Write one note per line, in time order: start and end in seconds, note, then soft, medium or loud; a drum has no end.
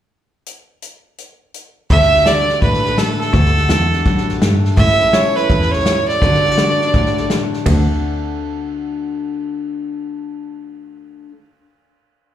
0.46 closed hi-hat soft
0.82 closed hi-hat soft
1.18 closed hi-hat soft
1.54 closed hi-hat soft
1.90 2.52 D2 medium
1.90 3.33 D3 medium
1.90 2.26 A3 medium
1.90 2.50 D4 medium
1.90 2.14 F#4 medium
1.90 2.86 A4 medium
1.90 2.28 E5 loud
1.90 kick loud
1.90 snare soft
2.02 snare soft
2.13 2.63 F#4 soft
2.13 snare soft
2.20 snare soft
2.26 2.98 A3 medium
2.26 2.61 D5 medium
2.26 snare medium
2.26 hi-hat pedal medium
2.49 3.33 D4 soft
2.49 snare soft
2.62 3.23 A2 medium
2.62 3.34 A2 medium
2.62 3.33 F#4 medium
2.62 3.00 B4 medium
2.62 kick loud
2.62 snare soft
2.74 snare soft
2.85 4.29 A4 medium
2.85 snare soft
2.98 3.70 A3 medium
2.98 3.20 A4 medium
2.98 snare medium
2.98 hi-hat pedal medium
3.21 4.25 A4 medium
3.21 snare soft
3.33 3.64 D2 medium
3.33 4.78 D3 medium
3.33 kick loud
3.33 snare soft
3.45 snare soft
3.57 4.05 F#4 medium
3.57 snare soft
3.69 4.00 E2 medium
3.69 4.41 A3 medium
3.69 snare loud
3.69 hi-hat pedal medium
3.93 4.77 D4 soft
3.93 snare soft
4.05 4.36 F#2 medium
4.05 4.76 A2 medium
4.05 4.76 F#4 medium
4.05 kick medium
4.05 snare soft
4.17 snare soft
4.29 4.80 A4 medium
4.29 snare soft
4.42 4.72 G2 medium
4.42 4.78 A3 medium
4.42 snare medium
4.42 hi-hat pedal medium
4.65 snare soft
4.77 5.49 A2 medium
4.77 5.39 A2 medium
4.77 5.13 C#4 medium
4.77 5.36 E4 medium
4.77 5.01 A4 medium
4.77 5.15 E5 loud
4.77 kick loud
4.77 snare soft
4.89 snare soft
5.01 5.50 A4 medium
5.01 snare soft
5.13 5.85 C#4 medium
5.13 5.38 C#5 medium
5.13 snare loud
5.13 hi-hat pedal medium
5.36 6.20 E4 medium
5.36 5.73 B4 medium
5.36 snare soft
5.50 6.11 E2 medium
5.50 6.22 A2 medium
5.50 5.74 A4 medium
5.50 kick medium
5.50 snare soft
5.62 snare soft
5.72 6.24 A4 soft
5.72 6.07 C#5 medium
5.72 snare soft
5.80 snare soft
5.86 6.21 C#4 medium
5.86 snare medium
5.86 hi-hat pedal medium
6.08 7.25 D5 loud
6.08 snare soft
6.22 6.84 D3 medium
6.22 7.65 D3 medium
6.22 6.57 A3 medium
6.22 6.81 D4 medium
6.22 6.46 F#4 medium
6.22 7.17 A4 medium
6.22 kick loud
6.22 snare soft
6.34 snare soft
6.45 6.52 E4 medium
6.45 snare soft
6.52 6.94 F#4 soft
6.58 7.29 A3 medium
6.58 snare medium
6.58 hi-hat pedal medium
6.81 7.65 D4 medium
6.81 snare soft
6.94 7.56 A2 medium
6.94 7.66 A2 medium
6.94 7.65 F#4 medium
6.94 kick loud
6.94 snare soft
7.06 snare soft
7.17 7.73 A4 soft
7.17 snare soft
7.30 7.65 A3 medium
7.30 snare medium
7.30 hi-hat pedal medium
7.53 snare soft
7.66 11.23 D2 medium
7.66 11.27 D3 medium
7.66 11.29 A3 medium
7.66 kick medium
7.66 ride medium
7.70 11.31 D4 medium
7.70 11.33 F#4 medium
7.74 11.35 A4 medium